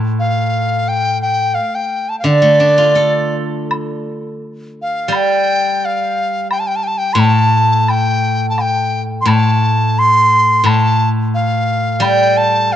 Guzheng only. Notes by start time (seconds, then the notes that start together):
Already playing: A2
2.24 D3
2.42 A3
2.60 D4
2.78 F4
2.95 A4
5.08 G3
7.15 A2
9.25 A2
10.64 A2
12.00 G3